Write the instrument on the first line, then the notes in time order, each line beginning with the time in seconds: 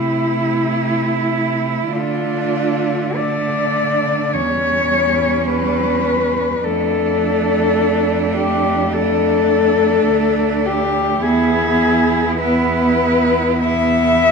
cello
Already playing: C3 A3 E4
1.92 D3 A3 D4 F4
3.16 A3 D4 D5
4.33 E2 G3 C#4 C#5
5.48 B4
6.64 F2 A3 D4 A4
8.37 G4
8.94 A3 D4 A4
10.09 D2
10.66 G4
11.23 E2 B3 E4 G#4
12.39 B3 E4 B4
13.64 B3 E4 E5